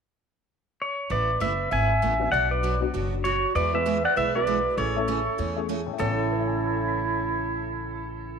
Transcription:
0.82 pedal steel guitar C#5
1.10 upright bass A1, steel-string acoustic guitar A3 B3 E4 B4, clarinet B4, pedal steel guitar D5
1.40 upright bass F#1, steel-string acoustic guitar A3 B3 E4 B4, clarinet B4, pedal steel guitar E5
1.71 upright bass G#1, steel-string acoustic guitar A3 B3 E4 B4, clarinet E5, pedal steel guitar G#5
2.02 upright bass A1, steel-string acoustic guitar A3 B3 E4 B4
2.20 honky-tonk piano F#3 B3 D4 F#4
2.32 upright bass B1, steel-string acoustic guitar B2 F#3 B3 D4 F#4, clarinet D5, pedal steel guitar F#5
2.51 clarinet B4, pedal steel guitar D5
2.63 steel-string acoustic guitar B2 F#3 B3 D4 F#4
2.80 honky-tonk piano F#3 B3 D4 F#4
2.94 upright bass F#1, steel-string acoustic guitar B2 F#3 B3 D4 F#4
3.24 steel-string acoustic guitar B2 F#3 B3 D4 F#4, clarinet F#4, pedal steel guitar C#5
3.55 upright bass E2, steel-string acoustic guitar E3 G#3 B3 E4 G#4, clarinet B4, pedal steel guitar D5
3.73 honky-tonk piano G#3 B3 E4 G#4, clarinet B4, pedal steel guitar E5
3.86 steel-string acoustic guitar E3 G#3 B3 E4 G#4
4.05 clarinet D5, pedal steel guitar F#5
4.16 upright bass B1, steel-string acoustic guitar E3 G#3 B3 E4 G#4, clarinet B4, pedal steel guitar E5
4.35 honky-tonk piano G#3 B3 E4 F#4, clarinet B4, pedal steel guitar D5
4.47 steel-string acoustic guitar E3 G#3 B3 E4 G#4
4.77 upright bass A1, steel-string acoustic guitar C#3 E3 A3 C#4 G#4, clarinet A4, pedal steel guitar C#5
4.96 honky-tonk piano A3 C#4 E4 A4
5.08 steel-string acoustic guitar C#3 E3 A3 C#4 G#4
5.38 upright bass E2, steel-string acoustic guitar C#3 E3 A3 C#4 G#4
5.56 honky-tonk piano A3 C#4 E4 G#4
5.69 steel-string acoustic guitar C#3 E3 A3 C#4 G#4
5.87 honky-tonk piano A2
5.93 honky-tonk piano A3
5.98 upright bass A1, steel-string acoustic guitar A2 C#3 E3 A3 C#4, honky-tonk piano B3, clarinet E4, pedal steel guitar A4
6.05 honky-tonk piano C#4
6.12 honky-tonk piano A4
6.31 honky-tonk piano B4
6.39 honky-tonk piano E5
6.47 honky-tonk piano G#5
6.56 honky-tonk piano B5
6.66 honky-tonk piano E6
6.77 honky-tonk piano G#6
6.88 honky-tonk piano B6

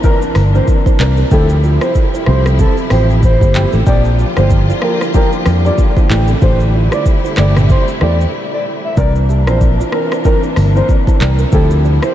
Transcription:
Already playing: string section C3 E3 A#3 D4, impact
0.03 grand piano E3 C4 D4 A#4, soft synth lead A#4, kick, shaker
0.22 kalimba D4 A#4, shaker
0.35 fingered electric bass G1, kalimba D4 A#4, cross-stick, open hi-hat, shaker
0.54 grand piano E3 C4 D4 A#4, soft synth lead C5, shaker
0.68 kick, shaker
0.86 kalimba E4 C5, kick, shaker
0.99 fingered electric bass C2, grand piano E3 C4 D4 A#4, clap
1.17 kalimba D4 A#4, shaker
1.31 fingered electric bass D2, grand piano F3 C4 E4 G4, string section F3 G3 E4, soft synth lead A4, kick, shaker
1.49 shaker
1.63 kalimba F4 D5, shaker
1.81 kalimba E4 C5, soft synth lead C5, cross-stick, shaker
1.95 kick, shaker
2.14 kalimba E4 C5, shaker
2.26 fingered electric bass C2, grand piano F3 C4 E4 G4, soft synth lead C5, cross-stick
2.46 kalimba C4 A4, cross-stick, shaker
2.59 kalimba C4 G4, soft synth lead A4, kick, shaker
2.77 shaker
2.90 fingered electric bass A1, grand piano F3 C4 E4 G4, soft synth lead C5, cross-stick, open hi-hat, shaker
3.10 shaker
3.23 soft synth lead C5, kick, shaker
3.41 fingered electric bass G1, kalimba A#3 G4, kick, shaker
3.54 grand piano F3 C4 E4 G4, clap
3.72 fingered electric bass A1, kalimba C4 A4, shaker
3.86 fingered electric bass A#1, string section D3 A#3 F4, grand piano F3 A#3 D4 G4, soft synth lead D5, kick, shaker
4.05 shaker
4.19 kalimba F4 D5, shaker
4.37 fingered electric bass G1, grand piano F3 A#3 D4 G4, kalimba E4 C5, soft synth lead C5, cross-stick, shaker
4.50 kick, shaker
4.69 kalimba F4 D5, shaker
4.82 grand piano F3 A#3 D4 G4, soft synth lead A#4, cross-stick
5.01 kalimba E4 C5, cross-stick, shaker
5.14 grand piano F3 A#3 D4 G4, soft synth lead A#4, kick, shaker
5.33 kalimba D4 A#4, shaker
5.46 fingered electric bass F2, kalimba D4 A#4, cross-stick, open hi-hat, shaker
5.64 grand piano F3 A#3 D4 G4, soft synth lead D5, shaker
5.78 kick, shaker
5.97 kalimba E4 C5, kick, shaker
6.10 fingered electric bass A1, grand piano E3 A3 D4 G4, string section G3 A3 E4, clap
6.28 kalimba C4 A4, shaker
6.42 fingered electric bass A1, grand piano E3 A3 D4 G4, soft synth lead C5, kick, shaker
6.60 shaker
6.74 kalimba F4 D5
6.92 kalimba E4 C5, soft synth lead D5, cross-stick, shaker
7.06 kick, shaker
7.24 kalimba E4 C5, shaker
7.37 fingered electric bass G1, grand piano E3 A3 D4 G4, soft synth lead D5, cross-stick, clap, shaker
7.56 kalimba C4 A4, cross-stick, mid tom, shaker
7.69 kalimba D4 G4, soft synth lead C5, kick, shaker
7.88 shaker
8.01 fingered electric bass E2, grand piano E3 A3 D4 G4, soft synth lead D5, cross-stick
8.21 shaker
8.53 soft synth lead D5
8.85 soft synth lead E5
8.97 fingered electric bass C2, string section C3 E3 A#3 D4, grand piano E3 C4 D4 A#4, soft synth lead D5, kick, shaker
9.15 shaker
9.29 kalimba G4 E5, shaker
9.47 fingered electric bass A#1, grand piano E3 C4 D4 A#4, kalimba F4 D5, soft synth lead C5, cross-stick, shaker
9.61 kick, shaker
9.79 kalimba F4 D5, shaker
9.92 grand piano E3 C4 D4 A#4, soft synth lead A#4, cross-stick
10.11 kalimba E4 C5, cross-stick, shaker
10.25 grand piano E3 C4 D4 A#4, soft synth lead A#4, kick, shaker
10.43 kalimba D4 A#4, shaker
10.56 fingered electric bass G1, kalimba D4 A#4, cross-stick, open hi-hat, shaker
10.75 grand piano E3 C4 D4 A#4, soft synth lead C5, shaker
10.89 kick, shaker
11.07 kalimba E4 C5, kick, shaker
11.20 fingered electric bass C2, grand piano E3 C4 D4 A#4, clap
11.38 kalimba D4 A#4, shaker
11.52 fingered electric bass D2, grand piano F3 C4 E4 G4, string section F3 G3 E4, soft synth lead A4, kick, shaker
11.71 shaker
11.84 kalimba F4 D5, shaker
12.02 kalimba E4 C5, soft synth lead C5, cross-stick, shaker

